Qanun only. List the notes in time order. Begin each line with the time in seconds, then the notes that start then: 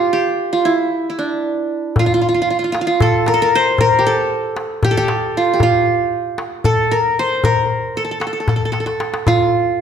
Already playing: F4 G4 A4
0.13 G4
0.53 F4
0.65 E4
1.10 E4
1.19 D4
1.99 F4
2.06 F4
2.14 F4
2.21 F4
2.29 F4
2.34 F4
2.42 F4
2.50 F4
2.59 F4
2.64 F4
2.72 F4
2.81 F4
2.87 F4
3.02 A4
3.28 A#4
3.34 A4
3.42 A#4
3.55 C5
3.81 A#4
3.99 G4
4.07 A4
4.84 G4
4.91 A4
4.97 G4
5.37 F4
5.54 G4
5.63 F4
6.65 A4
6.91 A#4
7.19 C5
7.45 A#4
7.97 A4
8.05 A4
8.11 A4
8.20 A4
8.27 A4
8.33 A4
8.40 A4
8.49 A4
8.56 A4
8.65 A4
8.72 A4
8.80 A4
8.86 A4
9.28 F4